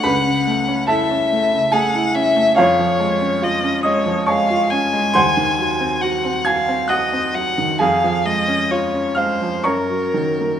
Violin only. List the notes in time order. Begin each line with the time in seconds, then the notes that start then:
Already playing: F#5
0.89 E5
1.73 F#5
2.15 E5
2.57 C#5
3.43 D#5
3.84 C#5
4.28 F5
4.70 G#5
6.01 F#5
6.46 F5
6.89 D#5
7.35 F#5
7.80 F5
8.26 D#5
8.71 C#5
9.18 C5
9.66 A#4